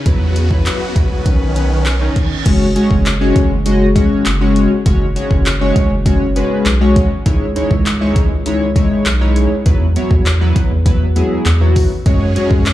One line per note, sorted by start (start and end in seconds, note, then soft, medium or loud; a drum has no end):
0.00 1.22 C#3 medium
0.06 0.69 E2 loud
0.06 0.36 F#3 medium
0.06 2.44 B3 medium
0.06 0.36 E4 medium
0.06 1.25 F#4 medium
0.06 0.36 B4 medium
0.06 kick loud
0.06 closed hi-hat medium
0.36 closed hi-hat medium
0.51 0.81 F#3 medium
0.51 0.81 E4 medium
0.51 0.81 B4 medium
0.51 kick medium
0.66 clap loud
0.66 closed hi-hat loud
0.96 1.06 E2 medium
0.96 1.26 F#3 medium
0.96 1.26 E4 medium
0.96 1.25 B4 medium
0.96 kick loud
0.96 closed hi-hat medium
1.11 1.21 C2 medium
1.26 2.10 B1 loud
1.26 1.50 D#3 medium
1.26 2.45 D#3 medium
1.26 2.45 C#4 medium
1.26 1.50 C#4 medium
1.26 1.50 B4 loud
1.26 kick loud
1.26 closed hi-hat loud
1.26 reverse cymbal medium
1.56 1.86 D#3 medium
1.56 1.86 C#4 medium
1.56 1.86 B4 loud
1.56 closed hi-hat medium
1.86 clap loud
1.86 closed hi-hat medium
2.01 2.31 D#3 medium
2.01 2.31 C#4 medium
2.01 2.31 D#4 medium
2.16 kick medium
2.16 closed hi-hat medium
2.46 2.77 F#1 medium
2.46 2.66 G#3 medium
2.46 2.66 C#4 medium
2.46 2.66 F#4 medium
2.46 2.66 C#5 loud
2.46 kick loud
2.46 closed hi-hat loud
2.46 crash loud
2.76 3.06 G#3 medium
2.76 3.06 C#4 medium
2.76 3.06 F#4 medium
2.76 3.06 C#5 medium
2.76 closed hi-hat medium
2.91 3.33 F#1 loud
2.91 kick medium
3.06 clap loud
3.06 closed hi-hat loud
3.21 3.51 G#3 loud
3.21 3.51 C#4 medium
3.21 3.51 F#4 medium
3.21 3.51 C#5 loud
3.36 kick loud
3.36 closed hi-hat medium
3.51 4.03 F#1 medium
3.66 3.86 G#3 medium
3.66 3.86 C#4 medium
3.66 3.86 F#4 medium
3.66 3.86 D#5 loud
3.66 closed hi-hat loud
3.96 4.26 G#3 medium
3.96 4.26 C#4 medium
3.96 4.26 F#4 medium
3.96 4.26 C#5 loud
3.96 kick loud
3.96 closed hi-hat medium
4.26 4.68 F#1 medium
4.26 clap loud
4.26 closed hi-hat loud
4.41 4.71 G#3 medium
4.41 4.71 C#4 medium
4.41 4.71 F#4 medium
4.41 4.71 C#5 loud
4.56 closed hi-hat medium
4.86 5.17 F#1 loud
4.86 5.06 G#3 medium
4.86 5.06 C#4 medium
4.86 5.06 F#4 medium
4.86 5.06 C#5 loud
4.86 kick loud
4.86 closed hi-hat loud
5.16 5.46 G#3 medium
5.16 5.46 C#4 medium
5.16 5.46 F#4 medium
5.16 5.46 C#5 loud
5.16 closed hi-hat medium
5.31 5.73 F#1 loud
5.31 kick medium
5.46 clap loud
5.46 closed hi-hat loud
5.61 5.91 G#3 loud
5.61 5.91 C#4 medium
5.61 5.91 F#4 medium
5.61 5.91 C#5 loud
5.76 kick loud
5.76 closed hi-hat medium
5.91 6.43 F#1 medium
6.06 6.26 G#3 medium
6.06 6.26 C#4 medium
6.06 6.26 F#4 medium
6.06 6.26 C#5 loud
6.06 kick loud
6.06 closed hi-hat loud
6.36 6.66 G#3 medium
6.36 6.66 C#4 medium
6.36 6.66 F#4 medium
6.36 6.66 B4 loud
6.36 closed hi-hat medium
6.66 7.08 B1 loud
6.66 clap loud
6.66 closed hi-hat loud
6.81 7.11 G#3 medium
6.81 7.11 C#4 medium
6.81 7.11 F#4 medium
6.81 7.11 C#5 loud
6.96 kick loud
6.96 closed hi-hat medium
7.26 7.57 C#2 loud
7.26 7.46 G#3 medium
7.26 7.46 D#4 medium
7.26 7.46 E4 medium
7.26 7.46 C#5 loud
7.26 kick loud
7.26 closed hi-hat loud
7.56 7.86 G#3 medium
7.56 7.86 D#4 medium
7.56 7.86 E4 medium
7.56 7.86 C#5 medium
7.56 closed hi-hat medium
7.71 8.13 C#2 loud
7.71 kick medium
7.86 clap loud
7.86 closed hi-hat loud
8.01 8.31 G#3 loud
8.01 8.31 D#4 medium
8.01 8.31 E4 medium
8.01 8.31 C#5 loud
8.16 kick loud
8.16 closed hi-hat medium
8.31 8.83 C#2 medium
8.46 8.66 G#3 medium
8.46 8.66 D#4 medium
8.46 8.66 E4 medium
8.46 8.66 C#5 loud
8.46 closed hi-hat loud
8.76 9.06 G#3 medium
8.76 9.06 D#4 medium
8.76 9.06 E4 medium
8.76 9.06 C#5 loud
8.76 kick loud
8.76 closed hi-hat medium
9.06 9.48 B1 loud
9.06 clap loud
9.06 closed hi-hat loud
9.21 9.51 G#3 medium
9.21 9.51 D#4 medium
9.21 9.51 E4 medium
9.21 9.51 C#5 loud
9.36 closed hi-hat medium
9.66 9.97 E2 medium
9.66 9.86 F#3 medium
9.66 9.86 B3 medium
9.66 9.86 E4 medium
9.66 9.86 B4 loud
9.66 kick loud
9.66 closed hi-hat loud
9.96 10.26 F#3 medium
9.96 10.26 B3 medium
9.96 10.26 E4 medium
9.96 10.26 C#5 loud
9.96 closed hi-hat medium
10.11 10.53 E2 loud
10.11 kick medium
10.26 clap loud
10.26 closed hi-hat loud
10.41 10.71 F#3 medium
10.41 10.71 B3 medium
10.41 10.71 E4 medium
10.41 10.71 B4 loud
10.56 kick loud
10.56 closed hi-hat medium
10.71 11.23 E2 medium
10.86 11.06 F#3 medium
10.86 11.06 B3 medium
10.86 11.06 E4 medium
10.86 11.06 B4 loud
10.86 kick loud
10.86 closed hi-hat loud
11.16 11.46 F#3 medium
11.16 11.46 B3 medium
11.16 11.46 E4 medium
11.16 11.46 G#4 loud
11.16 closed hi-hat medium
11.46 11.88 E2 loud
11.46 clap loud
11.46 closed hi-hat loud
11.61 11.91 F#3 medium
11.61 11.91 B3 medium
11.61 11.91 E4 medium
11.61 11.91 F#4 medium
11.76 kick loud
11.76 open hi-hat medium
12.06 12.37 F#2 loud
12.06 12.73 F#3 medium
12.06 12.26 G#3 medium
12.06 12.73 C#4 medium
12.06 12.26 C#4 medium
12.06 12.26 F#4 medium
12.06 12.73 G#4 medium
12.06 12.26 C#5 loud
12.06 kick loud
12.06 closed hi-hat loud
12.36 12.66 G#3 medium
12.36 12.66 C#4 medium
12.36 12.66 F#4 medium
12.36 12.66 C#5 loud
12.36 closed hi-hat medium
12.51 12.73 F#2 loud
12.51 kick medium
12.66 clap loud
12.66 closed hi-hat loud